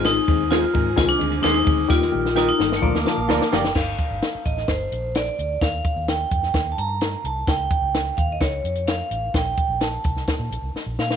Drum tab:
CC |----------------|----------------|x---------------|----------------|
RD |x-x-x-x-x-xxxxx-|----------------|----------------|----------------|
HH |----------------|----------------|--x-x-x-x-x-xxx-|x-x-x-x-x-x-x-x-|
SD |o---o---o---o---|oo-oo-oo-oo-oooo|o---o--oo---o---|o---o--oo---o---|
BD |--o---o-o-----o-|o-------o-------|o-o---o-o-------|o-o---o-o-------|

CC |----------------|----------------|
RD |----------------|----------------|
HH |x-x-x-x-x-xxx-x-|x-x-x-x-x-x-----|
SD |o---o---o---o---|o---o--oo---o-oo|
BD |o-o---o-o-------|o-o---o-o-------|